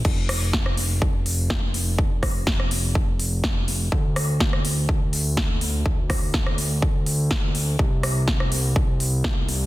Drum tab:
CC |x---------------|----------------|----------------|----------------|
HH |--o---o---o---o-|--o---o---o---o-|--o---o---o---o-|--o---o---o---o-|
SD |--r-or------o---|--r-or------o---|--r-or------o---|--r-or------o---|
BD |o---o---o---o---|o-o-o---o---o---|o---o---o---o---|o-o-o---o---o---|

CC |----------------|
HH |--o---o---o---o-|
SD |--r-or------o---|
BD |o---o---o---o---|